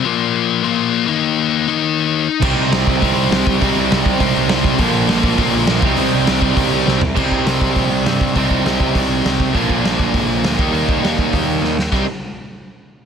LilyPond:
<<
  \new Staff \with { instrumentName = "Distorted electric guitar" } { \clef bass \time 4/4 \key c \minor \tempo 4 = 202 r1 | r1 | <c g c'>4 <c g c'>4 <c g c'>4 <c g c'>4 | <c g c'>4 <c g c'>4 <c g c'>4 <c g c'>4 |
<bes, f bes>4 <bes, f bes>4 <bes, f bes>4 <bes, f bes>8 r8 | <c g c'>4 <c g c'>4 <c g c'>4 <c g c'>4 | r1 | r1 |
r1 | r1 | r1 | }
  \new Staff \with { instrumentName = "Overdriven electric guitar" } { \clef bass \time 4/4 \key c \minor <bes, f bes>2 <bes, f bes>4. <ees bes ees'>8~ | <ees bes ees'>4. <ees bes ees'>2 r8 | <c g c'>2 <c g c'>2 | <c g c'>2 <c g c'>2 |
<bes, f bes>2 <bes, f bes>4. <c g c'>8~ | <c g c'>4. <c g c'>2 r8 | <c g c'>1 | <c g c'>1 |
<bes, f bes>2.~ <bes, f bes>8 <ees bes ees'>8~ | <ees bes ees'>2.~ <ees bes ees'>8 r8 | <c g c'>8 r2. r8 | }
  \new Staff \with { instrumentName = "Overdriven electric guitar" } { \clef bass \time 4/4 \key c \minor r1 | r1 | <c g c' ees'>1 | <c g c' ees'>1 |
<bes, d f bes d'>2.~ <bes, d f bes d'>8 <c g c' ees'>8~ | <c g c' ees'>2.~ <c g c' ees'>8 r8 | <c g c' ees'>1 | <c g c' ees'>1 |
<bes, d f bes d'>2.~ <bes, d f bes d'>8 <ees g bes ees'>8~ | <ees g bes ees'>2.~ <ees g bes ees'>8 r8 | <c g c' ees'>8 r2. r8 | }
  \new Staff \with { instrumentName = "Picked electric bass" } { \clef bass \time 4/4 \key c \minor r1 | r1 | c,8 c,8 c,8 c,8 c,8 c,8 c,8 c,8 | c,8 c,8 c,8 c,8 c,8 c,8 c,4 |
bes,,8 bes,,8 bes,,8 bes,,8 bes,,8 bes,,8 bes,,8 c,8 | c,8 c,8 c,8 c,8 c,8 c,8 c,4 | c,8 c,8 c,8 c,8 bes,,8 c,8 g,4 | c,4 c,8 c,8 c,4 c,4 |
bes,,8 bes,,8 bes,,8 bes,,8 aes,,8 bes,,8 d,8 ees,8 | ees,4 ees,8 ees,8 ees,4 ees,4 | c,8 r2. r8 | }
  \new DrumStaff \with { instrumentName = "Drums" } \drummode { \time 4/4 r4 r4 r4 r4 | r4 r4 r4 r4 | <cymc bd>4 <hho sn>8 bd8 <hho bd>4 <hho sn>8 bd8 | <hho bd>4 <hho sn>8 bd8 <hho bd>4 <hho sn>8 bd8 |
<hho bd>4 <hho sn>8 bd8 <hho bd>4 <hho sn>8 bd8 | hho4 <hho sn>8 bd8 <hho bd>4 sn8 tomfh8 | <cymc bd>8 bd8 <hho sn>8 bd8 <hho bd>4 <hho sn>8 bd8 | <hho bd>8 bd8 <hho sn>8 bd8 <hho bd>4 <hho sn>8 bd8 |
<hho bd>8 bd8 <hho sn>8 bd8 <hho bd>4 <hho sn>8 bd8 | hho8 bd8 <hho sn>8 bd8 <hho bd>4 sn8 sn8 | <bd sn>4 r4 r4 r4 | }
>>